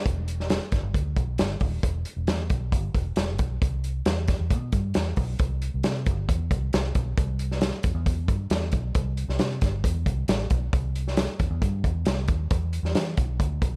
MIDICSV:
0, 0, Header, 1, 3, 480
1, 0, Start_track
1, 0, Tempo, 444774
1, 66, Time_signature, 4, 2, 24, 8
1, 14852, End_track
2, 0, Start_track
2, 0, Title_t, "Fingered electric bass"
2, 0, Program_c, 0, 33
2, 61, Note_on_c, 0, 28, 94
2, 632, Note_off_c, 0, 28, 0
2, 778, Note_on_c, 0, 31, 86
2, 884, Note_off_c, 0, 31, 0
2, 895, Note_on_c, 0, 31, 86
2, 1002, Note_off_c, 0, 31, 0
2, 1020, Note_on_c, 0, 38, 87
2, 1229, Note_off_c, 0, 38, 0
2, 1257, Note_on_c, 0, 35, 80
2, 1496, Note_on_c, 0, 31, 84
2, 1512, Note_off_c, 0, 35, 0
2, 1706, Note_off_c, 0, 31, 0
2, 1733, Note_on_c, 0, 27, 89
2, 1944, Note_off_c, 0, 27, 0
2, 1976, Note_on_c, 0, 28, 94
2, 2186, Note_off_c, 0, 28, 0
2, 2335, Note_on_c, 0, 28, 87
2, 2442, Note_off_c, 0, 28, 0
2, 2453, Note_on_c, 0, 40, 95
2, 2664, Note_off_c, 0, 40, 0
2, 2699, Note_on_c, 0, 35, 80
2, 2939, Note_on_c, 0, 31, 96
2, 2955, Note_off_c, 0, 35, 0
2, 3148, Note_off_c, 0, 31, 0
2, 3177, Note_on_c, 0, 28, 78
2, 3386, Note_off_c, 0, 28, 0
2, 3411, Note_on_c, 0, 28, 80
2, 3658, Note_off_c, 0, 28, 0
2, 3658, Note_on_c, 0, 35, 88
2, 3867, Note_off_c, 0, 35, 0
2, 3904, Note_on_c, 0, 36, 91
2, 4318, Note_off_c, 0, 36, 0
2, 4379, Note_on_c, 0, 40, 92
2, 4691, Note_off_c, 0, 40, 0
2, 4746, Note_on_c, 0, 40, 84
2, 4863, Note_on_c, 0, 47, 78
2, 4879, Note_off_c, 0, 40, 0
2, 5069, Note_off_c, 0, 47, 0
2, 5100, Note_on_c, 0, 43, 83
2, 5308, Note_off_c, 0, 43, 0
2, 5352, Note_on_c, 0, 40, 78
2, 5555, Note_off_c, 0, 40, 0
2, 5580, Note_on_c, 0, 35, 93
2, 5788, Note_off_c, 0, 35, 0
2, 5824, Note_on_c, 0, 36, 79
2, 6134, Note_off_c, 0, 36, 0
2, 6196, Note_on_c, 0, 36, 82
2, 6293, Note_off_c, 0, 36, 0
2, 6308, Note_on_c, 0, 48, 87
2, 6544, Note_on_c, 0, 31, 95
2, 6560, Note_off_c, 0, 48, 0
2, 6750, Note_off_c, 0, 31, 0
2, 6781, Note_on_c, 0, 40, 86
2, 6989, Note_off_c, 0, 40, 0
2, 7022, Note_on_c, 0, 36, 78
2, 7229, Note_off_c, 0, 36, 0
2, 7271, Note_on_c, 0, 36, 78
2, 7474, Note_off_c, 0, 36, 0
2, 7502, Note_on_c, 0, 35, 95
2, 7709, Note_off_c, 0, 35, 0
2, 7745, Note_on_c, 0, 36, 93
2, 8313, Note_off_c, 0, 36, 0
2, 8460, Note_on_c, 0, 40, 82
2, 8564, Note_off_c, 0, 40, 0
2, 8576, Note_on_c, 0, 40, 83
2, 8940, Note_off_c, 0, 40, 0
2, 8940, Note_on_c, 0, 43, 82
2, 9148, Note_off_c, 0, 43, 0
2, 9180, Note_on_c, 0, 40, 84
2, 9388, Note_off_c, 0, 40, 0
2, 9417, Note_on_c, 0, 35, 91
2, 9627, Note_off_c, 0, 35, 0
2, 9660, Note_on_c, 0, 36, 93
2, 9972, Note_off_c, 0, 36, 0
2, 10018, Note_on_c, 0, 36, 83
2, 10123, Note_off_c, 0, 36, 0
2, 10134, Note_on_c, 0, 48, 95
2, 10345, Note_off_c, 0, 48, 0
2, 10382, Note_on_c, 0, 31, 90
2, 10590, Note_off_c, 0, 31, 0
2, 10617, Note_on_c, 0, 40, 94
2, 10827, Note_off_c, 0, 40, 0
2, 10857, Note_on_c, 0, 36, 84
2, 11067, Note_off_c, 0, 36, 0
2, 11094, Note_on_c, 0, 33, 82
2, 11305, Note_off_c, 0, 33, 0
2, 11340, Note_on_c, 0, 35, 82
2, 11549, Note_off_c, 0, 35, 0
2, 11582, Note_on_c, 0, 36, 95
2, 12152, Note_off_c, 0, 36, 0
2, 12300, Note_on_c, 0, 40, 94
2, 12405, Note_off_c, 0, 40, 0
2, 12417, Note_on_c, 0, 40, 88
2, 12523, Note_off_c, 0, 40, 0
2, 12539, Note_on_c, 0, 43, 99
2, 12748, Note_off_c, 0, 43, 0
2, 12778, Note_on_c, 0, 40, 88
2, 12987, Note_off_c, 0, 40, 0
2, 13021, Note_on_c, 0, 36, 95
2, 13256, Note_off_c, 0, 36, 0
2, 13256, Note_on_c, 0, 39, 92
2, 13466, Note_off_c, 0, 39, 0
2, 13500, Note_on_c, 0, 40, 93
2, 13813, Note_off_c, 0, 40, 0
2, 13845, Note_on_c, 0, 40, 89
2, 13956, Note_off_c, 0, 40, 0
2, 13969, Note_on_c, 0, 52, 98
2, 14182, Note_off_c, 0, 52, 0
2, 14219, Note_on_c, 0, 35, 93
2, 14428, Note_off_c, 0, 35, 0
2, 14458, Note_on_c, 0, 38, 92
2, 14667, Note_off_c, 0, 38, 0
2, 14696, Note_on_c, 0, 35, 89
2, 14852, Note_off_c, 0, 35, 0
2, 14852, End_track
3, 0, Start_track
3, 0, Title_t, "Drums"
3, 61, Note_on_c, 9, 36, 108
3, 61, Note_on_c, 9, 42, 84
3, 169, Note_off_c, 9, 36, 0
3, 169, Note_off_c, 9, 42, 0
3, 301, Note_on_c, 9, 42, 69
3, 408, Note_off_c, 9, 42, 0
3, 434, Note_on_c, 9, 38, 26
3, 536, Note_on_c, 9, 42, 81
3, 542, Note_off_c, 9, 38, 0
3, 544, Note_on_c, 9, 38, 103
3, 644, Note_off_c, 9, 42, 0
3, 652, Note_off_c, 9, 38, 0
3, 775, Note_on_c, 9, 42, 82
3, 780, Note_on_c, 9, 36, 91
3, 784, Note_on_c, 9, 38, 33
3, 883, Note_off_c, 9, 42, 0
3, 888, Note_off_c, 9, 36, 0
3, 892, Note_off_c, 9, 38, 0
3, 1019, Note_on_c, 9, 36, 87
3, 1026, Note_on_c, 9, 42, 82
3, 1127, Note_off_c, 9, 36, 0
3, 1134, Note_off_c, 9, 42, 0
3, 1257, Note_on_c, 9, 36, 84
3, 1257, Note_on_c, 9, 42, 70
3, 1365, Note_off_c, 9, 36, 0
3, 1365, Note_off_c, 9, 42, 0
3, 1491, Note_on_c, 9, 42, 86
3, 1503, Note_on_c, 9, 38, 97
3, 1599, Note_off_c, 9, 42, 0
3, 1611, Note_off_c, 9, 38, 0
3, 1726, Note_on_c, 9, 46, 51
3, 1736, Note_on_c, 9, 36, 86
3, 1834, Note_off_c, 9, 46, 0
3, 1844, Note_off_c, 9, 36, 0
3, 1978, Note_on_c, 9, 36, 111
3, 1978, Note_on_c, 9, 42, 86
3, 2085, Note_off_c, 9, 42, 0
3, 2086, Note_off_c, 9, 36, 0
3, 2214, Note_on_c, 9, 42, 71
3, 2322, Note_off_c, 9, 42, 0
3, 2453, Note_on_c, 9, 42, 80
3, 2460, Note_on_c, 9, 38, 103
3, 2561, Note_off_c, 9, 42, 0
3, 2568, Note_off_c, 9, 38, 0
3, 2694, Note_on_c, 9, 42, 76
3, 2700, Note_on_c, 9, 36, 94
3, 2802, Note_off_c, 9, 42, 0
3, 2808, Note_off_c, 9, 36, 0
3, 2939, Note_on_c, 9, 36, 89
3, 2943, Note_on_c, 9, 42, 80
3, 3047, Note_off_c, 9, 36, 0
3, 3051, Note_off_c, 9, 42, 0
3, 3179, Note_on_c, 9, 36, 79
3, 3179, Note_on_c, 9, 42, 71
3, 3286, Note_off_c, 9, 36, 0
3, 3287, Note_off_c, 9, 42, 0
3, 3409, Note_on_c, 9, 42, 88
3, 3421, Note_on_c, 9, 38, 101
3, 3517, Note_off_c, 9, 42, 0
3, 3529, Note_off_c, 9, 38, 0
3, 3653, Note_on_c, 9, 42, 64
3, 3661, Note_on_c, 9, 36, 85
3, 3761, Note_off_c, 9, 42, 0
3, 3769, Note_off_c, 9, 36, 0
3, 3904, Note_on_c, 9, 36, 113
3, 3905, Note_on_c, 9, 42, 86
3, 4012, Note_off_c, 9, 36, 0
3, 4013, Note_off_c, 9, 42, 0
3, 4144, Note_on_c, 9, 42, 69
3, 4252, Note_off_c, 9, 42, 0
3, 4376, Note_on_c, 9, 42, 82
3, 4383, Note_on_c, 9, 38, 105
3, 4484, Note_off_c, 9, 42, 0
3, 4491, Note_off_c, 9, 38, 0
3, 4615, Note_on_c, 9, 42, 81
3, 4624, Note_on_c, 9, 36, 93
3, 4624, Note_on_c, 9, 38, 34
3, 4723, Note_off_c, 9, 42, 0
3, 4732, Note_off_c, 9, 36, 0
3, 4732, Note_off_c, 9, 38, 0
3, 4861, Note_on_c, 9, 42, 84
3, 4862, Note_on_c, 9, 36, 86
3, 4969, Note_off_c, 9, 42, 0
3, 4970, Note_off_c, 9, 36, 0
3, 5097, Note_on_c, 9, 42, 66
3, 5101, Note_on_c, 9, 36, 82
3, 5205, Note_off_c, 9, 42, 0
3, 5209, Note_off_c, 9, 36, 0
3, 5331, Note_on_c, 9, 42, 85
3, 5344, Note_on_c, 9, 38, 105
3, 5439, Note_off_c, 9, 42, 0
3, 5451, Note_off_c, 9, 38, 0
3, 5573, Note_on_c, 9, 46, 52
3, 5581, Note_on_c, 9, 36, 86
3, 5680, Note_off_c, 9, 46, 0
3, 5689, Note_off_c, 9, 36, 0
3, 5817, Note_on_c, 9, 42, 89
3, 5824, Note_on_c, 9, 36, 111
3, 5925, Note_off_c, 9, 42, 0
3, 5932, Note_off_c, 9, 36, 0
3, 6062, Note_on_c, 9, 42, 70
3, 6170, Note_off_c, 9, 42, 0
3, 6297, Note_on_c, 9, 42, 84
3, 6304, Note_on_c, 9, 38, 110
3, 6405, Note_off_c, 9, 42, 0
3, 6412, Note_off_c, 9, 38, 0
3, 6541, Note_on_c, 9, 42, 85
3, 6546, Note_on_c, 9, 36, 94
3, 6649, Note_off_c, 9, 42, 0
3, 6654, Note_off_c, 9, 36, 0
3, 6785, Note_on_c, 9, 36, 91
3, 6789, Note_on_c, 9, 42, 88
3, 6893, Note_off_c, 9, 36, 0
3, 6897, Note_off_c, 9, 42, 0
3, 7024, Note_on_c, 9, 36, 90
3, 7028, Note_on_c, 9, 42, 69
3, 7132, Note_off_c, 9, 36, 0
3, 7136, Note_off_c, 9, 42, 0
3, 7262, Note_on_c, 9, 42, 82
3, 7274, Note_on_c, 9, 38, 98
3, 7370, Note_off_c, 9, 42, 0
3, 7382, Note_off_c, 9, 38, 0
3, 7498, Note_on_c, 9, 42, 65
3, 7503, Note_on_c, 9, 36, 91
3, 7606, Note_off_c, 9, 42, 0
3, 7611, Note_off_c, 9, 36, 0
3, 7743, Note_on_c, 9, 42, 89
3, 7744, Note_on_c, 9, 36, 112
3, 7850, Note_off_c, 9, 42, 0
3, 7852, Note_off_c, 9, 36, 0
3, 7977, Note_on_c, 9, 42, 72
3, 8085, Note_off_c, 9, 42, 0
3, 8110, Note_on_c, 9, 38, 28
3, 8213, Note_on_c, 9, 42, 83
3, 8218, Note_off_c, 9, 38, 0
3, 8220, Note_on_c, 9, 38, 104
3, 8321, Note_off_c, 9, 42, 0
3, 8328, Note_off_c, 9, 38, 0
3, 8451, Note_on_c, 9, 42, 83
3, 8462, Note_on_c, 9, 36, 98
3, 8559, Note_off_c, 9, 42, 0
3, 8569, Note_off_c, 9, 36, 0
3, 8701, Note_on_c, 9, 36, 88
3, 8701, Note_on_c, 9, 42, 79
3, 8809, Note_off_c, 9, 36, 0
3, 8809, Note_off_c, 9, 42, 0
3, 8940, Note_on_c, 9, 36, 86
3, 8941, Note_on_c, 9, 42, 66
3, 9048, Note_off_c, 9, 36, 0
3, 9049, Note_off_c, 9, 42, 0
3, 9174, Note_on_c, 9, 42, 85
3, 9186, Note_on_c, 9, 38, 106
3, 9282, Note_off_c, 9, 42, 0
3, 9294, Note_off_c, 9, 38, 0
3, 9406, Note_on_c, 9, 42, 74
3, 9419, Note_on_c, 9, 36, 89
3, 9514, Note_off_c, 9, 42, 0
3, 9527, Note_off_c, 9, 36, 0
3, 9656, Note_on_c, 9, 42, 92
3, 9660, Note_on_c, 9, 36, 108
3, 9764, Note_off_c, 9, 42, 0
3, 9768, Note_off_c, 9, 36, 0
3, 9900, Note_on_c, 9, 42, 74
3, 10008, Note_off_c, 9, 42, 0
3, 10030, Note_on_c, 9, 38, 31
3, 10133, Note_on_c, 9, 42, 86
3, 10138, Note_off_c, 9, 38, 0
3, 10140, Note_on_c, 9, 38, 114
3, 10241, Note_off_c, 9, 42, 0
3, 10248, Note_off_c, 9, 38, 0
3, 10375, Note_on_c, 9, 42, 89
3, 10381, Note_on_c, 9, 36, 97
3, 10384, Note_on_c, 9, 38, 35
3, 10483, Note_off_c, 9, 42, 0
3, 10489, Note_off_c, 9, 36, 0
3, 10492, Note_off_c, 9, 38, 0
3, 10619, Note_on_c, 9, 36, 93
3, 10625, Note_on_c, 9, 42, 87
3, 10727, Note_off_c, 9, 36, 0
3, 10733, Note_off_c, 9, 42, 0
3, 10859, Note_on_c, 9, 36, 86
3, 10861, Note_on_c, 9, 42, 71
3, 10967, Note_off_c, 9, 36, 0
3, 10969, Note_off_c, 9, 42, 0
3, 11095, Note_on_c, 9, 42, 86
3, 11107, Note_on_c, 9, 38, 105
3, 11203, Note_off_c, 9, 42, 0
3, 11215, Note_off_c, 9, 38, 0
3, 11332, Note_on_c, 9, 42, 68
3, 11339, Note_on_c, 9, 36, 87
3, 11440, Note_off_c, 9, 42, 0
3, 11447, Note_off_c, 9, 36, 0
3, 11581, Note_on_c, 9, 36, 116
3, 11582, Note_on_c, 9, 42, 92
3, 11688, Note_off_c, 9, 36, 0
3, 11690, Note_off_c, 9, 42, 0
3, 11822, Note_on_c, 9, 42, 70
3, 11930, Note_off_c, 9, 42, 0
3, 11953, Note_on_c, 9, 38, 31
3, 12052, Note_on_c, 9, 42, 88
3, 12060, Note_off_c, 9, 38, 0
3, 12060, Note_on_c, 9, 38, 113
3, 12160, Note_off_c, 9, 42, 0
3, 12167, Note_off_c, 9, 38, 0
3, 12297, Note_on_c, 9, 42, 84
3, 12300, Note_on_c, 9, 36, 97
3, 12405, Note_off_c, 9, 42, 0
3, 12408, Note_off_c, 9, 36, 0
3, 12538, Note_on_c, 9, 36, 100
3, 12545, Note_on_c, 9, 42, 86
3, 12646, Note_off_c, 9, 36, 0
3, 12653, Note_off_c, 9, 42, 0
3, 12779, Note_on_c, 9, 36, 84
3, 12781, Note_on_c, 9, 42, 70
3, 12887, Note_off_c, 9, 36, 0
3, 12888, Note_off_c, 9, 42, 0
3, 13009, Note_on_c, 9, 42, 86
3, 13022, Note_on_c, 9, 38, 105
3, 13117, Note_off_c, 9, 42, 0
3, 13129, Note_off_c, 9, 38, 0
3, 13249, Note_on_c, 9, 42, 71
3, 13258, Note_on_c, 9, 36, 89
3, 13357, Note_off_c, 9, 42, 0
3, 13366, Note_off_c, 9, 36, 0
3, 13497, Note_on_c, 9, 42, 90
3, 13500, Note_on_c, 9, 36, 113
3, 13605, Note_off_c, 9, 42, 0
3, 13608, Note_off_c, 9, 36, 0
3, 13737, Note_on_c, 9, 42, 72
3, 13845, Note_off_c, 9, 42, 0
3, 13868, Note_on_c, 9, 38, 28
3, 13973, Note_on_c, 9, 42, 89
3, 13976, Note_off_c, 9, 38, 0
3, 13980, Note_on_c, 9, 38, 106
3, 14081, Note_off_c, 9, 42, 0
3, 14088, Note_off_c, 9, 38, 0
3, 14216, Note_on_c, 9, 42, 90
3, 14220, Note_on_c, 9, 36, 97
3, 14324, Note_off_c, 9, 42, 0
3, 14328, Note_off_c, 9, 36, 0
3, 14459, Note_on_c, 9, 36, 96
3, 14465, Note_on_c, 9, 42, 86
3, 14567, Note_off_c, 9, 36, 0
3, 14573, Note_off_c, 9, 42, 0
3, 14697, Note_on_c, 9, 36, 88
3, 14701, Note_on_c, 9, 42, 73
3, 14805, Note_off_c, 9, 36, 0
3, 14809, Note_off_c, 9, 42, 0
3, 14852, End_track
0, 0, End_of_file